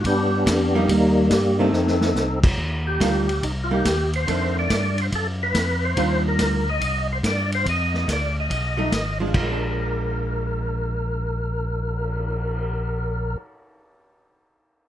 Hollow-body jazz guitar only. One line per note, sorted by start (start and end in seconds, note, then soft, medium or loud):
0.75 1.29 G3 medium
0.75 1.29 A#3 medium
0.75 1.29 D#4 medium
1.59 2.13 D#3 medium
1.59 2.13 A3 medium
1.59 2.14 C4 medium
3.00 3.25 D#3 medium
3.00 3.25 G3 medium
3.00 3.26 D4 medium
3.00 3.26 F4 medium
3.71 3.84 G3 medium
3.71 3.84 A#3 medium
3.71 3.84 D#4 medium
4.28 4.92 D#3 medium
4.28 4.92 A3 medium
4.28 4.93 D4 medium
5.97 6.61 D#3 soft
5.97 6.62 G3 medium
5.97 6.62 D4 medium
5.97 6.62 F4 medium
8.77 8.91 F#3 medium
8.77 8.91 A3 medium
8.77 8.91 D#4 medium
9.20 9.26 F3 medium
9.20 9.34 G#3 medium
9.20 9.34 D4 medium
9.27 13.32 F3 medium
9.40 13.45 G#3 medium
9.51 13.57 D4 medium